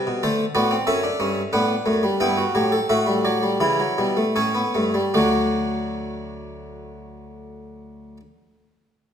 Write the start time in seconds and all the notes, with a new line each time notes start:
Already playing: G3 B4 E5
0.07 B2
0.23 D3 A3 A4 C5
0.55 A2 B3 F#4 D5
0.71 C4
0.87 F#2 C#4 A4 E5
1.04 D4
1.20 G2 C#4
1.53 A2 B3 D4 F#5
1.86 F#2 A3
2.03 G3
2.20 G2 B3 E4 G5
2.38 F#4
2.55 A2 F#3 G4
2.72 A4
2.89 A2 A3 F#4 E5
3.06 G3
3.25 F#3 D5
3.43 G3
3.60 C#3 E3 E4
3.79 F#3
3.98 B2 G3
4.17 A3
4.36 A2 C#4 A4 C#5
4.55 B3
4.75 G2 A3
4.94 G3
5.14 D2 F#3 A3 D4 F#4 D5